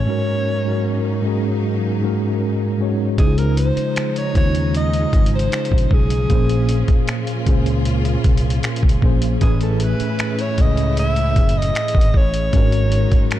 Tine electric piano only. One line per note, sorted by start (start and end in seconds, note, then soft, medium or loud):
0.05 0.55 G#2 medium
0.05 0.55 G#3 medium
0.05 0.56 C#4 medium
0.05 0.56 F#4 medium
0.10 0.57 A#4 loud
0.64 1.13 G#2 medium
0.64 1.13 G#3 medium
0.64 1.14 C#4 medium
0.64 1.14 F#4 medium
0.68 1.15 A#4 medium
1.22 1.88 G#2 medium
1.22 1.88 G#3 medium
1.22 1.89 C#4 medium
1.22 1.89 F#4 medium
1.27 1.90 G#4 loud
2.00 2.66 G#2 medium
2.00 2.66 G#3 medium
2.00 2.67 C#4 medium
2.00 2.67 F#4 medium
2.05 2.68 A#4 medium
2.78 3.11 G#2 medium
2.78 3.12 G#3 medium
2.78 3.12 C#4 medium
2.78 3.13 F#4 medium
2.82 3.13 C#5 medium
3.17 4.15 C#3 medium
3.17 4.15 G#3 medium
3.17 4.16 D#4 medium
3.17 3.26 E4 medium
3.21 4.17 C5 loud
3.27 4.20 F4 medium
4.34 5.64 C#3 medium
4.34 5.65 G#3 medium
4.34 5.65 D#4 medium
4.34 5.66 F4 medium
4.34 4.43 C5 medium
4.45 5.69 C#4 medium
6.29 7.26 A#2 loud
6.29 7.27 A#3 medium
6.29 7.27 C#4 medium
6.29 7.28 G#4 medium
6.33 7.29 C5 loud
7.46 8.76 A#2 medium
7.46 8.76 A#3 medium
7.46 8.77 C#4 medium
7.46 8.77 G#4 medium
7.50 8.78 C5 loud
9.01 9.34 A#2 medium
9.01 9.35 A#3 medium
9.01 9.35 C#4 medium
9.01 9.36 G#4 medium
9.06 9.36 C5 medium
9.41 10.38 A2 medium
9.41 10.39 A3 medium
9.41 10.39 C#4 medium
9.41 10.40 G#4 medium
9.41 10.40 B4 loud
10.57 11.87 A2 medium
10.57 11.88 A3 medium
10.57 11.89 C#4 medium
10.57 11.89 G#4 medium
10.62 11.90 C#5 medium
12.53 13.39 G#2 loud
12.53 13.39 G#3 medium
12.53 13.39 C#4 loud
12.53 13.39 F#4 medium
12.57 13.39 A#4 loud